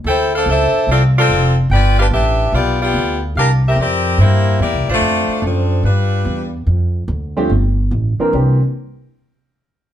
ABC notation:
X:1
M:4/4
L:1/8
Q:"Swing" 1/4=145
K:Gmix
V:1 name="Saxophone section"
[EAcg] [DAcf] [DAce]2 [CFAd] [CFAd]2 z | [FBdg] [DGBf] [DGBe]2 [B,FGd] [B,FGd]2 z | [DG_Bf] [CGBe] [CGBd]2 [_B,EGc]2 [B,EGd] [A,DFc]- | [A,DFc]2 [F,CDA]2 [G,DFB]3 z |
[K:Cmix] z8 | z8 |]
V:2 name="Grand piano"
z8 | z8 | z8 | z8 |
[K:Cmix] z3 [F,A,CDG] z3 [E,B,CDB] | [E,B,CDG] z6 z |]
V:3 name="Upright bass" clef=bass
D,,2 _D,, z C,,2 F,,,2 | G,,,2 A,,,2 B,,,2 D,,2 | C,,2 F,,2 G,,2 (3E,, C,, _B,,, | F,, z ^F,,2 G,,2 E,,2 |
[K:Cmix] F,,2 D,,2 G,,,2 A,,, z | C,, z6 z |]